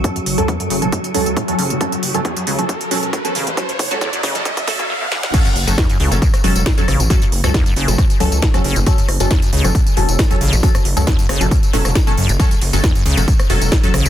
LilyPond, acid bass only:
\new Staff \with { instrumentName = "Acid bass" } { \clef bass \time 4/4 \key fis \minor \tempo 4 = 136 fis,16 fis,16 r16 fis,16 e,16 fis,16 cis16 gis,16 fis,16 r16 fis,16 r16 a,16 e,16 cis16 e,16 | fis,16 fis,16 r16 fis,16 e,16 fis,16 cis16 gis,16 fis,16 r16 fis,16 r16 a,16 e,16 cis16 e,16 | fis,16 fis,16 r16 fis,16 e,16 fis,16 cis16 gis,16 fis,16 r16 a,16 cis16 fis,16 b,16 fis,16 cis16 | fis,16 fis,16 r16 fis,16 e,16 fis,16 cis16 gis,16 fis,16 r16 fis,16 r16 a,16 e,16 cis16 e,16 |
fis,16 fis,16 r16 fis,16 e,16 fis,16 cis16 gis,16 fis,16 r16 fis,16 r16 a,16 e,16 cis16 e,16 | fis,16 fis,16 r16 fis,16 e,16 fis,16 cis16 gis,16 fis,16 r16 fis,16 r16 a,16 e,16 cis16 e,16 | fis,16 fis,16 r16 fis,16 e,16 fis,16 cis16 gis,16 fis,16 r16 a,16 cis16 fis,16 b,16 fis,16 cis16 | fis,16 fis,16 r16 fis,16 e,16 fis,16 cis16 gis,16 fis,16 r16 fis,16 r16 a,16 e,16 cis16 e,16 | }